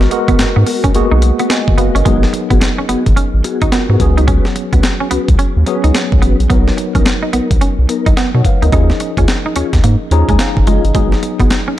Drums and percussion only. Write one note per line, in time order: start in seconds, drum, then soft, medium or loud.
0.01 snare medium
0.11 closed hi-hat medium
0.28 kick medium
0.28 closed hi-hat soft
0.39 snare loud
0.39 closed hi-hat medium
0.67 open hi-hat medium
0.84 kick loud
0.84 closed hi-hat medium
0.95 closed hi-hat medium
1.22 closed hi-hat medium
1.39 closed hi-hat medium
1.50 snare loud
1.50 closed hi-hat medium
1.68 kick medium
1.78 closed hi-hat medium
1.96 closed hi-hat soft
2.06 kick loud
2.06 closed hi-hat medium
2.23 snare medium
2.34 closed hi-hat medium
2.51 kick medium
2.51 closed hi-hat soft
2.61 snare loud
2.61 closed hi-hat medium
2.89 closed hi-hat medium
3.06 kick medium
3.06 closed hi-hat medium
3.17 closed hi-hat medium
3.44 closed hi-hat medium
3.62 kick medium
3.62 closed hi-hat medium
3.72 snare medium
3.72 closed hi-hat medium
4.00 kick medium
4.00 closed hi-hat medium
4.18 closed hi-hat soft
4.28 kick loud
4.28 closed hi-hat medium
4.45 snare medium
4.56 closed hi-hat medium
4.73 kick medium
4.73 closed hi-hat soft
4.83 snare loud
4.83 closed hi-hat medium
5.11 closed hi-hat medium
5.28 kick loud
5.28 closed hi-hat medium
5.39 closed hi-hat medium
5.67 closed hi-hat medium
5.84 closed hi-hat medium
5.95 snare loud
5.95 closed hi-hat medium
6.12 kick medium
6.22 closed hi-hat medium
6.40 closed hi-hat soft
6.50 kick loud
6.50 closed hi-hat medium
6.68 snare medium
6.78 closed hi-hat medium
6.95 kick medium
6.95 closed hi-hat soft
7.06 snare loud
7.06 closed hi-hat medium
7.33 closed hi-hat medium
7.51 kick medium
7.51 closed hi-hat medium
7.61 closed hi-hat medium
7.89 closed hi-hat medium
8.06 kick medium
8.06 closed hi-hat medium
8.17 snare medium
8.17 closed hi-hat medium
8.45 kick medium
8.45 closed hi-hat medium
8.62 closed hi-hat soft
8.72 kick loud
8.72 closed hi-hat medium
8.90 snare medium
9.00 closed hi-hat medium
9.17 kick medium
9.17 closed hi-hat soft
9.28 snare loud
9.28 closed hi-hat medium
9.56 closed hi-hat medium
9.73 kick loud
9.73 snare medium
9.73 closed hi-hat medium
9.84 closed hi-hat medium
10.11 closed hi-hat medium
10.29 kick medium
10.29 closed hi-hat medium
10.39 snare loud
10.39 closed hi-hat medium
10.57 kick medium
10.67 closed hi-hat medium
10.85 closed hi-hat soft
10.95 kick loud
10.95 closed hi-hat medium
11.12 snare medium
11.23 closed hi-hat medium
11.40 kick medium
11.40 closed hi-hat soft
11.50 snare loud
11.50 closed hi-hat medium